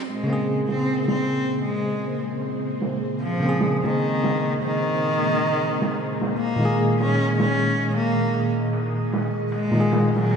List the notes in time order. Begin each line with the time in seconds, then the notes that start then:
0.04 G#3 A#3 G#4 C5, ride
0.24 C#3 A#3
0.30 C4 G#4
0.44 ride
0.68 C4, snare
0.83 ride
1.08 C4, snare
1.23 ride
1.47 ride
1.62 G#3, ride
1.86 ride
2.02 ride
2.41 ride
2.65 ride
2.81 snare, ride
3.20 F3, ride
3.40 C#3 A#3
3.46 C4 G#4
3.60 snare, ride
3.84 D#3, snare
3.99 ride
4.24 snare
4.39 ride
4.62 D#3, ride
4.78 ride
5.18 ride
5.57 ride
5.82 snare
5.97 ride
6.22 snare
6.36 A#3 D#5, ride
6.56 A#2 D#3
6.61 G#3 A#3
6.65 G#4
6.76 ride
7.00 C#4, snare
7.15 ride
7.40 C#4, snare
7.55 ride
7.78 ride
7.94 A#3, ride
8.18 ride
8.34 ride
8.73 ride
8.97 ride
9.12 snare, ride
9.52 G#3 F#5, ride
9.71 A#2 D#3
9.76 G#3 A#3
9.80 G#4
9.92 snare, ride
10.16 F#3, snare
10.31 ride